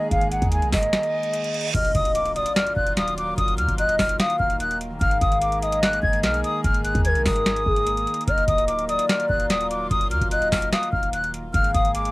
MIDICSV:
0, 0, Header, 1, 9, 480
1, 0, Start_track
1, 0, Key_signature, -6, "minor"
1, 0, Tempo, 408163
1, 133, Time_signature, 4, 2, 24, 8
1, 14247, End_track
2, 0, Start_track
2, 0, Title_t, "Flute"
2, 0, Program_c, 0, 73
2, 132, Note_on_c, 0, 77, 108
2, 332, Note_off_c, 0, 77, 0
2, 368, Note_on_c, 0, 78, 80
2, 569, Note_off_c, 0, 78, 0
2, 616, Note_on_c, 0, 80, 77
2, 814, Note_off_c, 0, 80, 0
2, 854, Note_on_c, 0, 75, 90
2, 2007, Note_off_c, 0, 75, 0
2, 2054, Note_on_c, 0, 89, 101
2, 2253, Note_off_c, 0, 89, 0
2, 2299, Note_on_c, 0, 87, 86
2, 2495, Note_off_c, 0, 87, 0
2, 2528, Note_on_c, 0, 86, 84
2, 2729, Note_off_c, 0, 86, 0
2, 2773, Note_on_c, 0, 87, 81
2, 2972, Note_off_c, 0, 87, 0
2, 3010, Note_on_c, 0, 89, 86
2, 3211, Note_off_c, 0, 89, 0
2, 3247, Note_on_c, 0, 90, 84
2, 3449, Note_off_c, 0, 90, 0
2, 3502, Note_on_c, 0, 87, 93
2, 3697, Note_off_c, 0, 87, 0
2, 3738, Note_on_c, 0, 86, 82
2, 3935, Note_off_c, 0, 86, 0
2, 3969, Note_on_c, 0, 87, 109
2, 4170, Note_off_c, 0, 87, 0
2, 4211, Note_on_c, 0, 89, 83
2, 4411, Note_off_c, 0, 89, 0
2, 4450, Note_on_c, 0, 90, 91
2, 4650, Note_off_c, 0, 90, 0
2, 4695, Note_on_c, 0, 89, 92
2, 4893, Note_off_c, 0, 89, 0
2, 4934, Note_on_c, 0, 87, 102
2, 5133, Note_off_c, 0, 87, 0
2, 5164, Note_on_c, 0, 89, 76
2, 5367, Note_off_c, 0, 89, 0
2, 5412, Note_on_c, 0, 90, 93
2, 5611, Note_off_c, 0, 90, 0
2, 5888, Note_on_c, 0, 89, 114
2, 6089, Note_off_c, 0, 89, 0
2, 6132, Note_on_c, 0, 87, 83
2, 6331, Note_off_c, 0, 87, 0
2, 6375, Note_on_c, 0, 86, 87
2, 6573, Note_off_c, 0, 86, 0
2, 6617, Note_on_c, 0, 87, 74
2, 6814, Note_off_c, 0, 87, 0
2, 6852, Note_on_c, 0, 90, 95
2, 7051, Note_off_c, 0, 90, 0
2, 7087, Note_on_c, 0, 92, 83
2, 7288, Note_off_c, 0, 92, 0
2, 7337, Note_on_c, 0, 89, 94
2, 7535, Note_off_c, 0, 89, 0
2, 7577, Note_on_c, 0, 87, 94
2, 7775, Note_off_c, 0, 87, 0
2, 7811, Note_on_c, 0, 89, 111
2, 8011, Note_off_c, 0, 89, 0
2, 8048, Note_on_c, 0, 90, 82
2, 8249, Note_off_c, 0, 90, 0
2, 8294, Note_on_c, 0, 92, 75
2, 8493, Note_off_c, 0, 92, 0
2, 8534, Note_on_c, 0, 87, 88
2, 9687, Note_off_c, 0, 87, 0
2, 9735, Note_on_c, 0, 89, 103
2, 9933, Note_off_c, 0, 89, 0
2, 9980, Note_on_c, 0, 87, 85
2, 10176, Note_off_c, 0, 87, 0
2, 10207, Note_on_c, 0, 86, 81
2, 10409, Note_off_c, 0, 86, 0
2, 10453, Note_on_c, 0, 87, 86
2, 10652, Note_off_c, 0, 87, 0
2, 10691, Note_on_c, 0, 89, 83
2, 10891, Note_off_c, 0, 89, 0
2, 10927, Note_on_c, 0, 90, 83
2, 11129, Note_off_c, 0, 90, 0
2, 11182, Note_on_c, 0, 87, 93
2, 11377, Note_off_c, 0, 87, 0
2, 11418, Note_on_c, 0, 86, 82
2, 11615, Note_off_c, 0, 86, 0
2, 11649, Note_on_c, 0, 87, 110
2, 11850, Note_off_c, 0, 87, 0
2, 11891, Note_on_c, 0, 89, 85
2, 12091, Note_off_c, 0, 89, 0
2, 12131, Note_on_c, 0, 90, 90
2, 12331, Note_off_c, 0, 90, 0
2, 12376, Note_on_c, 0, 89, 89
2, 12574, Note_off_c, 0, 89, 0
2, 12614, Note_on_c, 0, 87, 102
2, 12813, Note_off_c, 0, 87, 0
2, 12846, Note_on_c, 0, 89, 75
2, 13048, Note_off_c, 0, 89, 0
2, 13092, Note_on_c, 0, 90, 91
2, 13292, Note_off_c, 0, 90, 0
2, 13569, Note_on_c, 0, 89, 114
2, 13770, Note_off_c, 0, 89, 0
2, 13811, Note_on_c, 0, 87, 84
2, 14011, Note_off_c, 0, 87, 0
2, 14055, Note_on_c, 0, 86, 91
2, 14247, Note_off_c, 0, 86, 0
2, 14247, End_track
3, 0, Start_track
3, 0, Title_t, "Soft synth lead"
3, 0, Program_c, 1, 80
3, 2053, Note_on_c, 1, 75, 109
3, 2730, Note_off_c, 1, 75, 0
3, 2772, Note_on_c, 1, 74, 84
3, 3926, Note_off_c, 1, 74, 0
3, 4452, Note_on_c, 1, 75, 89
3, 4904, Note_off_c, 1, 75, 0
3, 4933, Note_on_c, 1, 77, 92
3, 5384, Note_off_c, 1, 77, 0
3, 5893, Note_on_c, 1, 77, 106
3, 6570, Note_off_c, 1, 77, 0
3, 6613, Note_on_c, 1, 75, 86
3, 7766, Note_off_c, 1, 75, 0
3, 8294, Note_on_c, 1, 70, 85
3, 8970, Note_off_c, 1, 70, 0
3, 9015, Note_on_c, 1, 68, 83
3, 9242, Note_off_c, 1, 68, 0
3, 9734, Note_on_c, 1, 75, 105
3, 10410, Note_off_c, 1, 75, 0
3, 10453, Note_on_c, 1, 74, 85
3, 11606, Note_off_c, 1, 74, 0
3, 12131, Note_on_c, 1, 75, 89
3, 12583, Note_off_c, 1, 75, 0
3, 12613, Note_on_c, 1, 77, 94
3, 13064, Note_off_c, 1, 77, 0
3, 13571, Note_on_c, 1, 77, 104
3, 14247, Note_off_c, 1, 77, 0
3, 14247, End_track
4, 0, Start_track
4, 0, Title_t, "Synth keys"
4, 0, Program_c, 2, 88
4, 0, Control_c, 2, 64, 127
4, 0, Note_on_c, 2, 51, 71
4, 0, Note_on_c, 2, 58, 58
4, 0, Note_on_c, 2, 68, 78
4, 1980, Note_off_c, 2, 51, 0
4, 2005, Note_off_c, 2, 58, 0
4, 2031, Note_off_c, 2, 68, 0
4, 2071, Control_c, 2, 64, 0
4, 14247, End_track
5, 0, Start_track
5, 0, Title_t, "String section"
5, 0, Program_c, 3, 48
5, 0, Note_on_c, 3, 51, 75
5, 0, Note_on_c, 3, 56, 71
5, 0, Note_on_c, 3, 58, 70
5, 0, Note_on_c, 3, 68, 86
5, 2015, Note_off_c, 3, 51, 0
5, 2015, Note_off_c, 3, 56, 0
5, 2015, Note_off_c, 3, 58, 0
5, 2015, Note_off_c, 3, 68, 0
5, 2052, Note_on_c, 3, 58, 73
5, 2053, Note_on_c, 3, 51, 78
5, 2053, Note_on_c, 3, 54, 73
5, 2053, Note_on_c, 3, 65, 89
5, 5855, Note_off_c, 3, 54, 0
5, 5855, Note_off_c, 3, 65, 0
5, 5893, Note_on_c, 3, 68, 86
5, 5894, Note_on_c, 3, 56, 72
5, 9695, Note_off_c, 3, 56, 0
5, 9695, Note_off_c, 3, 68, 0
5, 9733, Note_on_c, 3, 54, 71
5, 9733, Note_on_c, 3, 65, 90
5, 13526, Note_off_c, 3, 51, 0
5, 13526, Note_off_c, 3, 58, 0
5, 13535, Note_off_c, 3, 54, 0
5, 13535, Note_off_c, 3, 65, 0
5, 13574, Note_on_c, 3, 51, 81
5, 13574, Note_on_c, 3, 56, 72
5, 13574, Note_on_c, 3, 58, 74
5, 13574, Note_on_c, 3, 68, 87
5, 14247, Note_off_c, 3, 51, 0
5, 14247, Note_off_c, 3, 56, 0
5, 14247, Note_off_c, 3, 58, 0
5, 14247, Note_off_c, 3, 68, 0
5, 14247, End_track
6, 0, Start_track
6, 0, Title_t, "808-style bass"
6, 0, Program_c, 4, 38
6, 133, Note_on_c, 4, 32, 105
6, 479, Note_off_c, 4, 32, 0
6, 492, Note_on_c, 4, 39, 105
6, 733, Note_on_c, 4, 35, 100
6, 751, Note_off_c, 4, 39, 0
6, 847, Note_off_c, 4, 35, 0
6, 854, Note_on_c, 4, 32, 105
6, 1084, Note_off_c, 4, 32, 0
6, 2053, Note_on_c, 4, 27, 110
6, 2284, Note_off_c, 4, 27, 0
6, 2292, Note_on_c, 4, 26, 107
6, 2869, Note_off_c, 4, 26, 0
6, 3252, Note_on_c, 4, 27, 104
6, 3944, Note_off_c, 4, 27, 0
6, 3973, Note_on_c, 4, 27, 105
6, 4213, Note_on_c, 4, 39, 102
6, 4230, Note_off_c, 4, 27, 0
6, 4327, Note_off_c, 4, 39, 0
6, 4332, Note_on_c, 4, 27, 104
6, 4678, Note_off_c, 4, 27, 0
6, 4693, Note_on_c, 4, 27, 110
6, 4924, Note_off_c, 4, 27, 0
6, 5173, Note_on_c, 4, 27, 103
6, 5864, Note_off_c, 4, 27, 0
6, 5893, Note_on_c, 4, 32, 114
6, 6124, Note_off_c, 4, 32, 0
6, 6132, Note_on_c, 4, 32, 108
6, 7054, Note_off_c, 4, 32, 0
6, 7093, Note_on_c, 4, 32, 106
6, 7334, Note_on_c, 4, 35, 103
6, 7352, Note_off_c, 4, 32, 0
6, 7562, Note_off_c, 4, 35, 0
6, 7813, Note_on_c, 4, 32, 112
6, 8159, Note_off_c, 4, 32, 0
6, 8173, Note_on_c, 4, 39, 110
6, 8413, Note_on_c, 4, 35, 102
6, 8431, Note_off_c, 4, 39, 0
6, 8527, Note_off_c, 4, 35, 0
6, 8534, Note_on_c, 4, 32, 108
6, 8994, Note_off_c, 4, 32, 0
6, 9013, Note_on_c, 4, 32, 103
6, 9474, Note_off_c, 4, 32, 0
6, 9733, Note_on_c, 4, 27, 110
6, 9964, Note_off_c, 4, 27, 0
6, 9972, Note_on_c, 4, 26, 109
6, 10549, Note_off_c, 4, 26, 0
6, 10933, Note_on_c, 4, 27, 106
6, 11625, Note_off_c, 4, 27, 0
6, 11653, Note_on_c, 4, 27, 107
6, 11893, Note_on_c, 4, 39, 103
6, 11911, Note_off_c, 4, 27, 0
6, 12007, Note_off_c, 4, 39, 0
6, 12013, Note_on_c, 4, 27, 101
6, 12359, Note_off_c, 4, 27, 0
6, 12374, Note_on_c, 4, 27, 110
6, 12604, Note_off_c, 4, 27, 0
6, 12853, Note_on_c, 4, 27, 105
6, 13544, Note_off_c, 4, 27, 0
6, 13573, Note_on_c, 4, 32, 113
6, 13804, Note_off_c, 4, 32, 0
6, 13813, Note_on_c, 4, 32, 107
6, 14247, Note_off_c, 4, 32, 0
6, 14247, End_track
7, 0, Start_track
7, 0, Title_t, "Impact"
7, 0, Program_c, 5, 103
7, 2053, Note_on_c, 5, 60, 88
7, 3973, Note_off_c, 5, 60, 0
7, 14247, End_track
8, 0, Start_track
8, 0, Title_t, "Reverse cymbal"
8, 0, Program_c, 6, 119
8, 1093, Note_on_c, 6, 60, 85
8, 2053, Note_off_c, 6, 60, 0
8, 14247, End_track
9, 0, Start_track
9, 0, Title_t, "Drums"
9, 133, Note_on_c, 9, 36, 123
9, 133, Note_on_c, 9, 42, 79
9, 251, Note_off_c, 9, 36, 0
9, 251, Note_off_c, 9, 42, 0
9, 252, Note_on_c, 9, 42, 51
9, 369, Note_off_c, 9, 42, 0
9, 371, Note_on_c, 9, 42, 74
9, 489, Note_off_c, 9, 42, 0
9, 492, Note_on_c, 9, 36, 98
9, 494, Note_on_c, 9, 42, 57
9, 608, Note_off_c, 9, 42, 0
9, 608, Note_on_c, 9, 42, 82
9, 610, Note_off_c, 9, 36, 0
9, 726, Note_off_c, 9, 42, 0
9, 733, Note_on_c, 9, 42, 54
9, 851, Note_off_c, 9, 42, 0
9, 853, Note_on_c, 9, 42, 45
9, 854, Note_on_c, 9, 36, 84
9, 854, Note_on_c, 9, 38, 86
9, 855, Note_on_c, 9, 46, 79
9, 971, Note_off_c, 9, 36, 0
9, 971, Note_off_c, 9, 38, 0
9, 971, Note_off_c, 9, 42, 0
9, 972, Note_off_c, 9, 46, 0
9, 973, Note_on_c, 9, 42, 75
9, 1091, Note_off_c, 9, 42, 0
9, 1094, Note_on_c, 9, 38, 110
9, 1096, Note_on_c, 9, 42, 70
9, 1212, Note_off_c, 9, 38, 0
9, 1213, Note_off_c, 9, 42, 0
9, 1215, Note_on_c, 9, 42, 58
9, 1333, Note_off_c, 9, 42, 0
9, 1450, Note_on_c, 9, 42, 54
9, 1568, Note_off_c, 9, 42, 0
9, 1570, Note_on_c, 9, 42, 84
9, 1688, Note_off_c, 9, 42, 0
9, 1697, Note_on_c, 9, 42, 59
9, 1813, Note_off_c, 9, 42, 0
9, 1813, Note_on_c, 9, 42, 57
9, 1893, Note_off_c, 9, 42, 0
9, 1893, Note_on_c, 9, 42, 59
9, 1973, Note_off_c, 9, 42, 0
9, 1973, Note_on_c, 9, 42, 54
9, 2053, Note_off_c, 9, 42, 0
9, 2053, Note_on_c, 9, 36, 126
9, 2053, Note_on_c, 9, 42, 81
9, 2053, Note_on_c, 9, 49, 108
9, 2170, Note_off_c, 9, 49, 0
9, 2171, Note_off_c, 9, 36, 0
9, 2171, Note_off_c, 9, 42, 0
9, 2171, Note_on_c, 9, 42, 50
9, 2289, Note_off_c, 9, 42, 0
9, 2291, Note_on_c, 9, 42, 77
9, 2292, Note_on_c, 9, 36, 98
9, 2408, Note_off_c, 9, 42, 0
9, 2410, Note_off_c, 9, 36, 0
9, 2413, Note_on_c, 9, 42, 59
9, 2528, Note_off_c, 9, 42, 0
9, 2528, Note_on_c, 9, 42, 84
9, 2646, Note_off_c, 9, 42, 0
9, 2653, Note_on_c, 9, 42, 55
9, 2770, Note_off_c, 9, 42, 0
9, 2774, Note_on_c, 9, 42, 77
9, 2891, Note_off_c, 9, 42, 0
9, 2891, Note_on_c, 9, 42, 78
9, 3008, Note_off_c, 9, 42, 0
9, 3013, Note_on_c, 9, 38, 116
9, 3015, Note_on_c, 9, 42, 68
9, 3131, Note_off_c, 9, 38, 0
9, 3133, Note_off_c, 9, 42, 0
9, 3135, Note_on_c, 9, 42, 60
9, 3252, Note_off_c, 9, 42, 0
9, 3252, Note_on_c, 9, 36, 97
9, 3370, Note_off_c, 9, 36, 0
9, 3370, Note_on_c, 9, 42, 58
9, 3488, Note_off_c, 9, 42, 0
9, 3490, Note_on_c, 9, 42, 88
9, 3493, Note_on_c, 9, 38, 96
9, 3608, Note_off_c, 9, 42, 0
9, 3611, Note_off_c, 9, 38, 0
9, 3617, Note_on_c, 9, 42, 60
9, 3735, Note_off_c, 9, 42, 0
9, 3736, Note_on_c, 9, 42, 67
9, 3853, Note_off_c, 9, 42, 0
9, 3973, Note_on_c, 9, 36, 127
9, 3973, Note_on_c, 9, 42, 85
9, 4091, Note_off_c, 9, 36, 0
9, 4091, Note_off_c, 9, 42, 0
9, 4092, Note_on_c, 9, 42, 52
9, 4209, Note_off_c, 9, 42, 0
9, 4211, Note_on_c, 9, 42, 79
9, 4329, Note_off_c, 9, 42, 0
9, 4332, Note_on_c, 9, 36, 101
9, 4333, Note_on_c, 9, 42, 61
9, 4448, Note_off_c, 9, 42, 0
9, 4448, Note_on_c, 9, 42, 87
9, 4450, Note_off_c, 9, 36, 0
9, 4566, Note_off_c, 9, 42, 0
9, 4573, Note_on_c, 9, 42, 56
9, 4691, Note_off_c, 9, 42, 0
9, 4693, Note_on_c, 9, 36, 89
9, 4693, Note_on_c, 9, 38, 93
9, 4694, Note_on_c, 9, 46, 82
9, 4811, Note_off_c, 9, 36, 0
9, 4811, Note_off_c, 9, 38, 0
9, 4811, Note_off_c, 9, 46, 0
9, 4811, Note_on_c, 9, 42, 78
9, 4929, Note_off_c, 9, 42, 0
9, 4934, Note_on_c, 9, 38, 114
9, 4936, Note_on_c, 9, 42, 69
9, 5052, Note_off_c, 9, 38, 0
9, 5053, Note_off_c, 9, 42, 0
9, 5055, Note_on_c, 9, 42, 63
9, 5173, Note_off_c, 9, 42, 0
9, 5173, Note_on_c, 9, 36, 99
9, 5290, Note_off_c, 9, 36, 0
9, 5290, Note_on_c, 9, 42, 58
9, 5408, Note_off_c, 9, 42, 0
9, 5410, Note_on_c, 9, 42, 90
9, 5528, Note_off_c, 9, 42, 0
9, 5537, Note_on_c, 9, 42, 59
9, 5655, Note_off_c, 9, 42, 0
9, 5655, Note_on_c, 9, 42, 69
9, 5773, Note_off_c, 9, 42, 0
9, 5893, Note_on_c, 9, 36, 125
9, 5893, Note_on_c, 9, 42, 81
9, 6011, Note_off_c, 9, 36, 0
9, 6011, Note_off_c, 9, 42, 0
9, 6011, Note_on_c, 9, 42, 51
9, 6129, Note_off_c, 9, 42, 0
9, 6131, Note_on_c, 9, 42, 78
9, 6132, Note_on_c, 9, 36, 101
9, 6248, Note_off_c, 9, 42, 0
9, 6250, Note_off_c, 9, 36, 0
9, 6253, Note_on_c, 9, 42, 60
9, 6368, Note_off_c, 9, 42, 0
9, 6368, Note_on_c, 9, 42, 84
9, 6486, Note_off_c, 9, 42, 0
9, 6493, Note_on_c, 9, 42, 56
9, 6611, Note_off_c, 9, 42, 0
9, 6614, Note_on_c, 9, 42, 73
9, 6731, Note_off_c, 9, 42, 0
9, 6731, Note_on_c, 9, 42, 78
9, 6849, Note_off_c, 9, 42, 0
9, 6854, Note_on_c, 9, 38, 119
9, 6856, Note_on_c, 9, 42, 70
9, 6972, Note_off_c, 9, 38, 0
9, 6973, Note_off_c, 9, 42, 0
9, 6975, Note_on_c, 9, 42, 62
9, 7093, Note_off_c, 9, 42, 0
9, 7093, Note_on_c, 9, 36, 97
9, 7211, Note_off_c, 9, 36, 0
9, 7211, Note_on_c, 9, 42, 57
9, 7329, Note_off_c, 9, 42, 0
9, 7331, Note_on_c, 9, 42, 88
9, 7333, Note_on_c, 9, 38, 90
9, 7448, Note_off_c, 9, 42, 0
9, 7451, Note_off_c, 9, 38, 0
9, 7457, Note_on_c, 9, 42, 62
9, 7575, Note_off_c, 9, 42, 0
9, 7576, Note_on_c, 9, 42, 69
9, 7693, Note_off_c, 9, 42, 0
9, 7813, Note_on_c, 9, 36, 127
9, 7814, Note_on_c, 9, 42, 79
9, 7931, Note_off_c, 9, 36, 0
9, 7931, Note_off_c, 9, 42, 0
9, 7932, Note_on_c, 9, 42, 53
9, 8050, Note_off_c, 9, 42, 0
9, 8051, Note_on_c, 9, 42, 77
9, 8169, Note_off_c, 9, 42, 0
9, 8172, Note_on_c, 9, 36, 103
9, 8174, Note_on_c, 9, 42, 60
9, 8289, Note_off_c, 9, 42, 0
9, 8289, Note_on_c, 9, 42, 84
9, 8290, Note_off_c, 9, 36, 0
9, 8406, Note_off_c, 9, 42, 0
9, 8413, Note_on_c, 9, 42, 58
9, 8531, Note_off_c, 9, 42, 0
9, 8533, Note_on_c, 9, 38, 89
9, 8533, Note_on_c, 9, 42, 45
9, 8534, Note_on_c, 9, 36, 92
9, 8534, Note_on_c, 9, 46, 80
9, 8651, Note_off_c, 9, 36, 0
9, 8651, Note_off_c, 9, 38, 0
9, 8651, Note_off_c, 9, 42, 0
9, 8652, Note_off_c, 9, 46, 0
9, 8653, Note_on_c, 9, 42, 77
9, 8771, Note_off_c, 9, 42, 0
9, 8774, Note_on_c, 9, 38, 113
9, 8776, Note_on_c, 9, 42, 70
9, 8892, Note_off_c, 9, 38, 0
9, 8893, Note_off_c, 9, 42, 0
9, 8895, Note_on_c, 9, 42, 61
9, 9013, Note_off_c, 9, 42, 0
9, 9013, Note_on_c, 9, 36, 99
9, 9130, Note_off_c, 9, 36, 0
9, 9130, Note_on_c, 9, 42, 59
9, 9248, Note_off_c, 9, 42, 0
9, 9251, Note_on_c, 9, 42, 88
9, 9368, Note_off_c, 9, 42, 0
9, 9377, Note_on_c, 9, 42, 60
9, 9493, Note_off_c, 9, 42, 0
9, 9493, Note_on_c, 9, 42, 58
9, 9573, Note_off_c, 9, 42, 0
9, 9573, Note_on_c, 9, 42, 59
9, 9653, Note_off_c, 9, 42, 0
9, 9653, Note_on_c, 9, 42, 58
9, 9733, Note_off_c, 9, 42, 0
9, 9733, Note_on_c, 9, 36, 127
9, 9733, Note_on_c, 9, 42, 85
9, 9851, Note_off_c, 9, 36, 0
9, 9851, Note_off_c, 9, 42, 0
9, 9852, Note_on_c, 9, 42, 51
9, 9970, Note_off_c, 9, 42, 0
9, 9972, Note_on_c, 9, 36, 104
9, 9972, Note_on_c, 9, 42, 79
9, 10089, Note_off_c, 9, 42, 0
9, 10090, Note_off_c, 9, 36, 0
9, 10094, Note_on_c, 9, 42, 62
9, 10209, Note_off_c, 9, 42, 0
9, 10209, Note_on_c, 9, 42, 84
9, 10326, Note_off_c, 9, 42, 0
9, 10334, Note_on_c, 9, 42, 56
9, 10451, Note_off_c, 9, 42, 0
9, 10454, Note_on_c, 9, 42, 76
9, 10572, Note_off_c, 9, 42, 0
9, 10572, Note_on_c, 9, 42, 81
9, 10689, Note_off_c, 9, 42, 0
9, 10694, Note_on_c, 9, 38, 115
9, 10696, Note_on_c, 9, 42, 68
9, 10812, Note_off_c, 9, 38, 0
9, 10814, Note_off_c, 9, 42, 0
9, 10816, Note_on_c, 9, 42, 60
9, 10933, Note_on_c, 9, 36, 94
9, 10934, Note_off_c, 9, 42, 0
9, 11051, Note_off_c, 9, 36, 0
9, 11051, Note_on_c, 9, 42, 56
9, 11169, Note_off_c, 9, 42, 0
9, 11171, Note_on_c, 9, 42, 90
9, 11174, Note_on_c, 9, 38, 94
9, 11289, Note_off_c, 9, 42, 0
9, 11291, Note_off_c, 9, 38, 0
9, 11298, Note_on_c, 9, 42, 60
9, 11415, Note_off_c, 9, 42, 0
9, 11416, Note_on_c, 9, 42, 69
9, 11534, Note_off_c, 9, 42, 0
9, 11653, Note_on_c, 9, 36, 122
9, 11654, Note_on_c, 9, 42, 80
9, 11771, Note_off_c, 9, 36, 0
9, 11771, Note_off_c, 9, 42, 0
9, 11772, Note_on_c, 9, 42, 52
9, 11890, Note_off_c, 9, 42, 0
9, 11892, Note_on_c, 9, 42, 77
9, 12009, Note_off_c, 9, 42, 0
9, 12013, Note_on_c, 9, 36, 99
9, 12014, Note_on_c, 9, 42, 60
9, 12129, Note_off_c, 9, 42, 0
9, 12129, Note_on_c, 9, 42, 85
9, 12130, Note_off_c, 9, 36, 0
9, 12247, Note_off_c, 9, 42, 0
9, 12254, Note_on_c, 9, 42, 57
9, 12371, Note_off_c, 9, 42, 0
9, 12374, Note_on_c, 9, 36, 86
9, 12374, Note_on_c, 9, 38, 91
9, 12375, Note_on_c, 9, 46, 81
9, 12491, Note_off_c, 9, 38, 0
9, 12492, Note_off_c, 9, 36, 0
9, 12492, Note_off_c, 9, 46, 0
9, 12493, Note_on_c, 9, 42, 76
9, 12610, Note_off_c, 9, 42, 0
9, 12615, Note_on_c, 9, 38, 114
9, 12617, Note_on_c, 9, 42, 72
9, 12733, Note_off_c, 9, 38, 0
9, 12734, Note_off_c, 9, 42, 0
9, 12736, Note_on_c, 9, 42, 60
9, 12853, Note_on_c, 9, 36, 93
9, 12854, Note_off_c, 9, 42, 0
9, 12971, Note_off_c, 9, 36, 0
9, 12971, Note_on_c, 9, 42, 58
9, 13089, Note_off_c, 9, 42, 0
9, 13091, Note_on_c, 9, 42, 89
9, 13209, Note_off_c, 9, 42, 0
9, 13218, Note_on_c, 9, 42, 59
9, 13335, Note_off_c, 9, 42, 0
9, 13336, Note_on_c, 9, 42, 68
9, 13453, Note_off_c, 9, 42, 0
9, 13573, Note_on_c, 9, 36, 127
9, 13574, Note_on_c, 9, 42, 81
9, 13691, Note_off_c, 9, 36, 0
9, 13691, Note_off_c, 9, 42, 0
9, 13693, Note_on_c, 9, 42, 51
9, 13810, Note_off_c, 9, 42, 0
9, 13812, Note_on_c, 9, 42, 80
9, 13813, Note_on_c, 9, 36, 98
9, 13929, Note_off_c, 9, 42, 0
9, 13930, Note_off_c, 9, 36, 0
9, 13934, Note_on_c, 9, 42, 58
9, 14049, Note_off_c, 9, 42, 0
9, 14049, Note_on_c, 9, 42, 88
9, 14167, Note_off_c, 9, 42, 0
9, 14174, Note_on_c, 9, 42, 58
9, 14247, Note_off_c, 9, 42, 0
9, 14247, End_track
0, 0, End_of_file